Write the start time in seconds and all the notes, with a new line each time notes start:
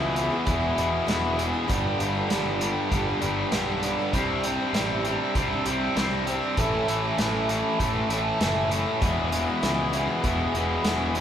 Already playing: C#2 E2 B2 E3 B3 E4 G#4
0.15 E2 B2 E3 B3 E4 G#4, closed hi-hat
0.30 E3 B3 E4 G#4
0.46 E1 E2 B2 E3 B3 E4 G#4, kick, closed hi-hat
0.60 E3 B3 E4 G#4
0.77 E1 E2 B2 E3 B3 E4 G#4, closed hi-hat
1.07 E1 E2 B2 E3 B3 E4 G#4, snare, closed hi-hat
1.38 E2 B2 E3 B3 E4 G#4, closed hi-hat
1.52 E3 B3 E4 G#4
1.68 G1 G2 D3 G3 B3 D4 G4, kick, closed hi-hat
1.99 G1 G2 D3 G3 B3 D4 G4, closed hi-hat
2.13 G3 B3 D4 G4
2.30 G1 G2 D3 G3 B3 D4 G4, snare, closed hi-hat
2.60 G2 D3 G3 B3 D4 G4, closed hi-hat
2.91 G1 G2 D3 G3 B3 D4 G4, kick, closed hi-hat
3.07 G3 B3 D4 G4
3.21 G1 G2 D3 G3 B3 D4 G4, closed hi-hat
3.51 B1 G2 D3 G3 B3 D4 G4, snare, closed hi-hat
3.82 G2 D3 G3 B3 D4 G4, closed hi-hat
3.98 G3 B3 D4 G4
4.13 C2 C3 G3 C4 D4 G4, kick, closed hi-hat
4.43 C3 G3 C4 D4 G4, closed hi-hat
4.58 C4 D4 G4
4.73 A1 C3 G3 C4 D4 G4, snare, closed hi-hat
5.04 C3 G3 C4 D4 G4, closed hi-hat
5.35 C2 C3 G3 C4 D4 G4, kick, closed hi-hat
5.51 C4 D4 G4
5.65 C2 C3 G3 C4 D4 G4, closed hi-hat
5.95 C2 C3 G3 C4 D4 G4, snare, closed hi-hat
6.26 C3 G3 C4 D4 G4, closed hi-hat
6.41 C4 D4 G4
6.57 A1 A2 E3 A3 C#4 A4, kick, closed hi-hat
6.87 A1 A2 E3 A3 C#4 A4, closed hi-hat
7.02 A3 C#4 A4
7.18 A1 A2 E3 A3 C#4 A4, snare, closed hi-hat
7.48 A2 E3 A3 C#4 A4, closed hi-hat
7.79 A1 A2 E3 A3 C#4 A4, kick, closed hi-hat
7.94 A3 C#4 A4
8.09 A1 A2 E3 A3 C#4 A4, closed hi-hat
8.40 F#1 A2 E3 A3 C#4 A4, snare, closed hi-hat
8.71 A2 E3 A3 C#4 A4, closed hi-hat
8.86 A3 C#4 A4
9.01 E1 E2 B2 E3 G#3 B3 G#4, kick, closed hi-hat
9.32 E2 B2 E3 G#3 B3 G#4, closed hi-hat
9.46 E3 G#3 B3 G#4
9.63 C#2 E2 B2 E3 G#3 B3 G#4, snare, closed hi-hat
9.93 E2 B2 E3 G#3 B3 G#4, closed hi-hat
10.07 E3 G#3 B3 G#4
10.23 E1 E2 B2 E3 G#3 B3 G#4, kick, closed hi-hat
10.37 E3 G#3 B3 G#4
10.53 E1 E2 B2 E3 G#3 B3 G#4, closed hi-hat
10.83 E1 E2 B2 E3 G#3 B3 G#4, snare, closed hi-hat
10.98 E3 G#3 B3 G#4
11.14 E2 B2 E3 G#3 B3 G#4, closed hi-hat